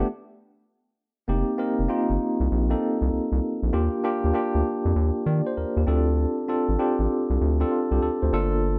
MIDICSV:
0, 0, Header, 1, 3, 480
1, 0, Start_track
1, 0, Tempo, 612245
1, 1005, Time_signature, 4, 2, 24, 8
1, 6891, End_track
2, 0, Start_track
2, 0, Title_t, "Tine electric piano"
2, 0, Program_c, 0, 4
2, 0, Control_c, 0, 64, 127
2, 56, Control_c, 0, 64, 0
2, 1003, Note_on_c, 0, 58, 86
2, 1006, Note_on_c, 0, 60, 79
2, 1012, Note_on_c, 0, 63, 75
2, 1013, Note_on_c, 0, 67, 95
2, 1133, Control_c, 0, 64, 127
2, 1199, Note_off_c, 0, 58, 0
2, 1201, Note_off_c, 0, 60, 0
2, 1203, Note_off_c, 0, 63, 0
2, 1204, Note_off_c, 0, 67, 0
2, 1239, Note_on_c, 0, 58, 84
2, 1241, Note_on_c, 0, 60, 79
2, 1247, Note_on_c, 0, 63, 72
2, 1249, Note_on_c, 0, 70, 92
2, 1437, Note_off_c, 0, 58, 0
2, 1438, Note_off_c, 0, 60, 0
2, 1441, Note_off_c, 0, 63, 0
2, 1442, Note_off_c, 0, 70, 0
2, 1477, Note_on_c, 0, 58, 90
2, 1482, Note_on_c, 0, 60, 79
2, 1484, Note_on_c, 0, 63, 82
2, 1488, Note_on_c, 0, 65, 99
2, 1932, Note_off_c, 0, 58, 0
2, 1935, Note_off_c, 0, 60, 0
2, 1936, Note_off_c, 0, 63, 0
2, 1938, Note_off_c, 0, 65, 0
2, 2116, Note_on_c, 0, 58, 85
2, 2121, Note_on_c, 0, 60, 76
2, 2122, Note_on_c, 0, 63, 75
2, 2125, Note_on_c, 0, 69, 87
2, 2702, Note_off_c, 0, 58, 0
2, 2704, Note_off_c, 0, 60, 0
2, 2704, Note_off_c, 0, 63, 0
2, 2706, Note_off_c, 0, 69, 0
2, 2924, Note_on_c, 0, 58, 86
2, 2925, Note_on_c, 0, 62, 73
2, 2927, Note_on_c, 0, 65, 81
2, 2931, Note_on_c, 0, 67, 98
2, 2934, Control_c, 0, 64, 0
2, 3060, Control_c, 0, 64, 127
2, 3119, Note_off_c, 0, 58, 0
2, 3120, Note_off_c, 0, 62, 0
2, 3121, Note_off_c, 0, 65, 0
2, 3123, Note_off_c, 0, 67, 0
2, 3164, Note_on_c, 0, 58, 90
2, 3167, Note_on_c, 0, 62, 81
2, 3172, Note_on_c, 0, 65, 81
2, 3173, Note_on_c, 0, 67, 100
2, 3360, Note_off_c, 0, 58, 0
2, 3361, Note_off_c, 0, 62, 0
2, 3363, Note_off_c, 0, 65, 0
2, 3364, Note_off_c, 0, 67, 0
2, 3400, Note_on_c, 0, 58, 87
2, 3404, Note_on_c, 0, 62, 81
2, 3407, Note_on_c, 0, 65, 81
2, 3411, Note_on_c, 0, 67, 100
2, 3854, Note_off_c, 0, 58, 0
2, 3856, Note_off_c, 0, 62, 0
2, 3857, Note_off_c, 0, 65, 0
2, 3859, Note_off_c, 0, 67, 0
2, 4129, Note_on_c, 0, 74, 62
2, 4275, Note_off_c, 0, 74, 0
2, 4285, Note_on_c, 0, 72, 76
2, 4363, Note_off_c, 0, 72, 0
2, 4370, Note_on_c, 0, 70, 72
2, 4516, Note_off_c, 0, 70, 0
2, 4526, Note_on_c, 0, 67, 60
2, 4599, Note_on_c, 0, 60, 94
2, 4604, Note_on_c, 0, 62, 92
2, 4605, Note_on_c, 0, 65, 82
2, 4609, Note_on_c, 0, 69, 100
2, 4614, Control_c, 0, 64, 0
2, 4752, Note_off_c, 0, 67, 0
2, 4756, Control_c, 0, 64, 127
2, 5015, Note_off_c, 0, 60, 0
2, 5017, Note_off_c, 0, 62, 0
2, 5018, Note_off_c, 0, 65, 0
2, 5020, Note_off_c, 0, 69, 0
2, 5083, Note_on_c, 0, 60, 82
2, 5084, Note_on_c, 0, 62, 74
2, 5088, Note_on_c, 0, 65, 78
2, 5091, Note_on_c, 0, 69, 92
2, 5279, Note_off_c, 0, 60, 0
2, 5279, Note_off_c, 0, 62, 0
2, 5281, Note_off_c, 0, 65, 0
2, 5283, Note_off_c, 0, 69, 0
2, 5321, Note_on_c, 0, 60, 87
2, 5325, Note_on_c, 0, 62, 82
2, 5328, Note_on_c, 0, 65, 83
2, 5330, Note_on_c, 0, 67, 97
2, 5774, Note_off_c, 0, 60, 0
2, 5776, Note_off_c, 0, 62, 0
2, 5778, Note_off_c, 0, 65, 0
2, 5779, Note_off_c, 0, 67, 0
2, 5958, Note_on_c, 0, 60, 85
2, 5961, Note_on_c, 0, 62, 78
2, 5964, Note_on_c, 0, 65, 71
2, 5968, Note_on_c, 0, 69, 92
2, 6040, Note_off_c, 0, 65, 0
2, 6049, Note_off_c, 0, 69, 0
2, 6049, Note_on_c, 0, 65, 67
2, 6195, Note_off_c, 0, 65, 0
2, 6207, Note_on_c, 0, 67, 74
2, 6284, Note_off_c, 0, 67, 0
2, 6291, Note_on_c, 0, 69, 76
2, 6436, Note_off_c, 0, 69, 0
2, 6447, Note_on_c, 0, 72, 64
2, 6521, Note_off_c, 0, 62, 0
2, 6524, Note_off_c, 0, 60, 0
2, 6529, Note_on_c, 0, 58, 92
2, 6531, Note_on_c, 0, 62, 84
2, 6535, Control_c, 0, 64, 0
2, 6536, Note_on_c, 0, 65, 82
2, 6536, Note_on_c, 0, 69, 109
2, 6672, Note_off_c, 0, 72, 0
2, 6687, Control_c, 0, 64, 127
2, 6891, Note_off_c, 0, 58, 0
2, 6891, Note_off_c, 0, 62, 0
2, 6891, Note_off_c, 0, 65, 0
2, 6891, Note_off_c, 0, 69, 0
2, 6891, End_track
3, 0, Start_track
3, 0, Title_t, "Analog synth bass"
3, 0, Program_c, 1, 38
3, 1008, Note_on_c, 1, 29, 96
3, 1126, Note_off_c, 1, 29, 0
3, 1405, Note_on_c, 1, 29, 93
3, 1468, Note_off_c, 1, 29, 0
3, 1645, Note_on_c, 1, 31, 99
3, 1708, Note_off_c, 1, 31, 0
3, 1883, Note_on_c, 1, 36, 102
3, 1947, Note_off_c, 1, 36, 0
3, 1971, Note_on_c, 1, 34, 108
3, 2153, Note_off_c, 1, 34, 0
3, 2363, Note_on_c, 1, 36, 98
3, 2427, Note_off_c, 1, 36, 0
3, 2449, Note_on_c, 1, 36, 50
3, 2511, Note_off_c, 1, 36, 0
3, 2602, Note_on_c, 1, 36, 97
3, 2666, Note_off_c, 1, 36, 0
3, 2843, Note_on_c, 1, 34, 90
3, 2907, Note_off_c, 1, 34, 0
3, 2929, Note_on_c, 1, 39, 110
3, 3047, Note_off_c, 1, 39, 0
3, 3326, Note_on_c, 1, 39, 91
3, 3389, Note_off_c, 1, 39, 0
3, 3565, Note_on_c, 1, 38, 92
3, 3628, Note_off_c, 1, 38, 0
3, 3804, Note_on_c, 1, 41, 95
3, 3868, Note_off_c, 1, 41, 0
3, 3887, Note_on_c, 1, 39, 109
3, 4006, Note_off_c, 1, 39, 0
3, 4126, Note_on_c, 1, 51, 100
3, 4245, Note_off_c, 1, 51, 0
3, 4370, Note_on_c, 1, 39, 45
3, 4431, Note_off_c, 1, 39, 0
3, 4521, Note_on_c, 1, 39, 92
3, 4585, Note_off_c, 1, 39, 0
3, 4605, Note_on_c, 1, 38, 95
3, 4909, Note_off_c, 1, 38, 0
3, 5242, Note_on_c, 1, 33, 85
3, 5306, Note_off_c, 1, 33, 0
3, 5481, Note_on_c, 1, 33, 99
3, 5546, Note_off_c, 1, 33, 0
3, 5723, Note_on_c, 1, 36, 106
3, 5787, Note_off_c, 1, 36, 0
3, 5809, Note_on_c, 1, 38, 98
3, 5992, Note_off_c, 1, 38, 0
3, 6204, Note_on_c, 1, 36, 105
3, 6267, Note_off_c, 1, 36, 0
3, 6288, Note_on_c, 1, 38, 50
3, 6350, Note_off_c, 1, 38, 0
3, 6449, Note_on_c, 1, 38, 89
3, 6511, Note_off_c, 1, 38, 0
3, 6527, Note_on_c, 1, 31, 106
3, 6891, Note_off_c, 1, 31, 0
3, 6891, End_track
0, 0, End_of_file